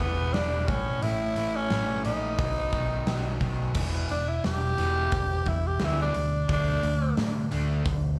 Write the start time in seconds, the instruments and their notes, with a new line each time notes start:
Already playing: overdriven electric guitar G3 B3 E4
0.00 picked electric bass E1, overdriven electric guitar E3, tenor saxophone B3, kick
0.33 picked electric bass E1, overdriven electric guitar G3, tenor saxophone D4, snare, open hi-hat
0.68 picked electric bass A1, overdriven electric guitar A2, tenor saxophone C#4, kick, open hi-hat
1.02 picked electric bass A1, overdriven electric guitar A2, tenor saxophone E4, open hi-hat
1.36 picked electric bass A1, overdriven electric guitar E3 A3, open hi-hat
1.56 tenor saxophone C#4
1.70 picked electric bass A1, overdriven electric guitar E3 C#4, snare, open hi-hat
2.05 picked electric bass A#1, overdriven electric guitar C#4 E4, tenor saxophone D#4, open hi-hat
2.39 picked electric bass B1, overdriven electric guitar B2, kick, open hi-hat
2.72 picked electric bass B1, overdriven electric guitar D#3, kick, open hi-hat
3.06 picked electric bass B1, overdriven electric guitar F#3, snare, open hi-hat
3.41 picked electric bass B1, overdriven electric guitar D#3, kick, open hi-hat
3.74 picked electric bass E1, overdriven electric guitar E2 B2 E3, kick, crash
4.09 picked electric bass E1, overdriven electric guitar E2 B2, tenor saxophone D4, open hi-hat
4.28 tenor saxophone E4
4.44 picked electric bass E1, overdriven electric guitar E2 B2, tenor saxophone G4, snare, open hi-hat
4.78 picked electric bass E1, overdriven electric guitar E2 B2 E3, open hi-hat
5.12 picked electric bass E1, overdriven electric guitar E2 B2, kick, open hi-hat
5.46 picked electric bass E2, overdriven electric guitar E2 B2, tenor saxophone E4, kick, open hi-hat
5.67 tenor saxophone G4
5.79 picked electric bass D2, overdriven electric guitar E2 B2 E3, snare, open hi-hat
5.84 tenor saxophone E4
6.02 tenor saxophone D4
6.14 picked electric bass D2, overdriven electric guitar E2 B2, open hi-hat
6.48 picked electric bass D2, overdriven electric guitar D3 A3 D4, kick, open hi-hat
6.53 tenor saxophone D4
6.83 picked electric bass D2, overdriven electric guitar D3 A3, open hi-hat
7.17 picked electric bass A2, overdriven electric guitar D3 A3, snare, open hi-hat
7.51 picked electric bass D2, overdriven electric guitar D3 A3 D4, open hi-hat
7.85 picked electric bass D2, overdriven electric guitar D3 A3, kick, open hi-hat